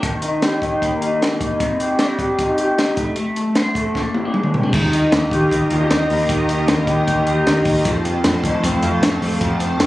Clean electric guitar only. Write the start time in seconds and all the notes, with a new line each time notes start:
Already playing: G3
0.03 D#3
0.22 D#4
0.42 G4
0.62 D#4
0.82 A#3
1.01 D#4
1.21 A#3
1.41 D#4
1.61 C3
1.81 G4
2.00 D5
2.19 G4
2.39 D#4
2.59 G4
2.78 D#4
2.98 A3
3.18 A3
3.37 A4
3.57 C5
3.77 A4
3.96 A#2
4.16 C4
4.25 D4
4.35 G#3
4.54 C4
4.63 D4
4.74 D#3
4.93 D#4
5.12 A#3
5.32 G4
5.52 D#4
5.71 F4
5.81 G4
5.90 D#4
6.10 A#3
6.29 D#3
6.49 D#4
6.68 A#3
6.88 G4
7.07 D#4
7.26 G4
7.46 D#4
7.66 A#3
7.85 F3
8.04 C4
8.24 A3
8.44 D#4
8.54 F4
8.64 C4
8.83 F4
9.03 C4
9.22 A3
9.41 F3
9.60 C4
9.80 A3